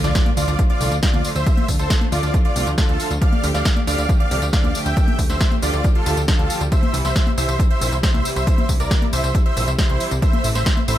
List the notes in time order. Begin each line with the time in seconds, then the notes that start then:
Already playing: impact
0.04 D2 F4 D5, snare, closed hi-hat, tambourine
0.15 D3 F3 A3 F4, kick, snare, closed hi-hat, tambourine
0.26 closed hi-hat, high conga
0.37 D2 D3 F3 A3 F4 D5, open hi-hat, tambourine
0.48 D2, closed hi-hat, tambourine
0.59 D3 F3 A3 F4, kick, closed hi-hat, tambourine
0.70 F4 D5, closed hi-hat
0.81 C2 D3 F3 A3 F4, open hi-hat, tambourine
0.92 D2, closed hi-hat, tambourine
1.03 D3 F3 A3 F4 D5, kick, snare, closed hi-hat, tambourine
1.14 D2, closed hi-hat, high conga
1.24 D3 F3 A3 F4, open hi-hat, tambourine
1.35 D2 C5 E5, closed hi-hat, tambourine
1.46 D3 F3 A3 F4, kick, closed hi-hat, tambourine
1.57 closed hi-hat, high conga
1.68 D2 D3 F3 A3 F4, kick, open hi-hat, tambourine
1.79 D2 A4 C5, tambourine
1.90 D3 F3 A3 F4, kick, snare, closed hi-hat, tambourine
2.01 closed hi-hat, high conga
2.12 D2 D3 F3 A3 F4 D5, open hi-hat, tambourine
2.23 D2, closed hi-hat, tambourine
2.34 D3 F3 A3 F4, kick, closed hi-hat, tambourine
2.45 F4 D5, closed hi-hat
2.56 C2 D3 F3 A3 F4, open hi-hat, tambourine
2.67 D2, closed hi-hat, tambourine
2.78 D3 F3 A3 F4 A4, kick, snare, closed hi-hat, tambourine
2.89 D2, closed hi-hat
2.99 D3 F3 A3 F4, open hi-hat, tambourine
3.11 D2, closed hi-hat, tambourine
3.21 D3 F3 A3 G4 D5 F5, kick, closed hi-hat, tambourine
3.33 closed hi-hat, high conga
3.43 D2 D3 F3 A3 G4, open hi-hat, tambourine
3.54 D2 D5 F5, snare, closed hi-hat, tambourine
3.65 D3 F3 A3 G4, kick, snare, closed hi-hat, tambourine
3.76 closed hi-hat, high conga
3.87 D2 D3 F3 A3 G4 D5 F5, open hi-hat, tambourine
3.98 D2, closed hi-hat, tambourine
4.09 D3 F3 A3 G4, kick, closed hi-hat, tambourine
4.20 D5 F5, closed hi-hat
4.31 C2 D3 F3 A3 G4, open hi-hat, tambourine
4.42 D2, closed hi-hat, tambourine
4.53 D3 F3 A3 G4 D5 F5, kick, snare, closed hi-hat
4.64 D2, closed hi-hat, high conga
4.75 D3 F3 A3 G4, open hi-hat, tambourine
4.86 D2 E5 G5, closed hi-hat, tambourine
4.97 D3 F3 A3 G4, kick, closed hi-hat, tambourine
5.08 closed hi-hat, high conga
5.19 D2 D3 F3 A3 G4, kick, open hi-hat, tambourine
5.30 D2 C5 E5, snare, closed hi-hat, tambourine
5.40 D3 F3 A3 G4, kick, snare, closed hi-hat, tambourine
5.51 closed hi-hat, high conga
5.62 D2 D3 F3 A3 F4 G4 D5, open hi-hat, tambourine
5.73 D2, closed hi-hat, tambourine
5.84 D3 F3 A3 G4, kick, closed hi-hat, tambourine
5.95 F4 A4, closed hi-hat
6.06 D2 D3 F3 A3 G4, open hi-hat, tambourine
6.17 D2, closed hi-hat, tambourine
6.28 D3 F3 A3 F4 G4 A4, kick, snare, closed hi-hat, tambourine
6.39 D2, closed hi-hat
6.50 D3 F3 A3 G4, open hi-hat, tambourine
6.61 D2, closed hi-hat, tambourine
6.72 C3 E3 G3 E4 C5 E5, kick, closed hi-hat, tambourine
6.83 closed hi-hat, high conga
6.94 C2 C3 E3 G3 E4, open hi-hat, tambourine
7.05 C2 C5 E5, snare, closed hi-hat, tambourine
7.16 C3 E3 G3 E4, kick, snare, closed hi-hat, tambourine
7.27 closed hi-hat, high conga
7.38 C2 C3 E3 G3 E4 C5 E5, open hi-hat, tambourine
7.49 C2, closed hi-hat, tambourine
7.59 C3 E3 G3 E4, kick, closed hi-hat, tambourine
7.70 C5 E5, closed hi-hat
7.81 A#1 C3 E3 G3 E4, open hi-hat, tambourine
7.92 C2, closed hi-hat, tambourine
8.03 C3 E3 G3 E4 C5 E5, kick, snare, closed hi-hat, tambourine
8.14 C2, closed hi-hat, high conga
8.25 C3 E3 G3 E4, open hi-hat, tambourine
8.36 C2 C5 E5, closed hi-hat, tambourine
8.47 C3 E3 G3 E4, kick, closed hi-hat, tambourine
8.58 closed hi-hat, high conga
8.69 C2 C3 E3 G3 E4, kick, open hi-hat, tambourine
8.80 C2 A#4 D5, closed hi-hat, tambourine
8.91 C3 E3 G3 E4, kick, snare, closed hi-hat, tambourine
9.02 closed hi-hat, high conga
9.13 C2 C3 E3 G3 E4 C5 E5, open hi-hat, tambourine
9.24 C2, closed hi-hat, tambourine
9.35 C3 E3 G3 E4, kick, closed hi-hat, tambourine
9.46 C5 E5, closed hi-hat
9.57 A#1 C3 E3 G3 E4, open hi-hat, tambourine
9.68 C2, closed hi-hat, tambourine
9.78 C3 E3 G3 E4 C5, kick, snare, closed hi-hat, tambourine
9.89 C2, closed hi-hat
10.00 C3 E3 G3 E4, open hi-hat, tambourine
10.11 C2, closed hi-hat, tambourine
10.22 C3 E3 A3 E4 C5 E5, kick, closed hi-hat, tambourine
10.33 closed hi-hat, high conga
10.44 A1 C3 E3 A3 E4, open hi-hat, tambourine
10.55 A1 C5 E5, snare, closed hi-hat, tambourine
10.66 C3 E3 A3 E4, kick, snare, closed hi-hat, tambourine
10.77 closed hi-hat, high conga
10.88 A1 C3 E3 A3 E4 C5 E5, open hi-hat, tambourine